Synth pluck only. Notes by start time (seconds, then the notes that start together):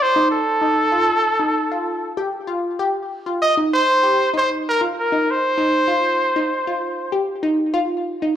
0.16 D#4
0.61 D#4
0.92 F4
1.39 D#4
1.72 F4
2.17 G4
2.47 F4
2.79 G4
3.26 F4
3.57 D#4
4.03 G4
4.34 D#4
4.81 F4
5.12 D#4
5.58 D#4
5.88 F4
6.36 D#4
6.67 F4
7.12 G4
7.43 D#4
7.74 F4
8.22 D#4